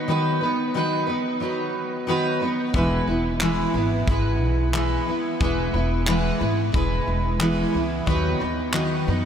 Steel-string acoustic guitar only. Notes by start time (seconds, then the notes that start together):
0.08 D#3 F#3 B3 D#4 B4
0.41 B3 D#4 B4
0.74 D#3 F#3 B3 D#4 B4
1.07 B3 D#4 B4
1.40 F#3 B3 D#4 B4
2.07 D#3 F#3 B3 D#4 B4
2.40 B3 D#4 B4
2.73 E3 G#3 B3 E4 B4
3.07 B3 E4 B4
3.41 E3 G#3 B3 E4 B4
3.74 B3 E4 B4
4.08 G#3 B3 E4 B4
4.73 E3 G#3 B3 E4 B4
5.06 B3 E4 B4
5.40 E3 G#3 B3 E4 B4
5.74 B3 E4 B4
6.07 E3 G#3 B3 E4 B4
6.40 B3 E4 B4
6.72 G#3 B3 E4 B4
7.40 E3 G#3 B3 E4 B4
7.72 B3 E4 B4
8.06 D#3 F#3 B3 D#4 B4
8.40 B3 D#4 B4
8.73 D#3 F#3 B3 D#4 B4
9.07 B3 D#4 B4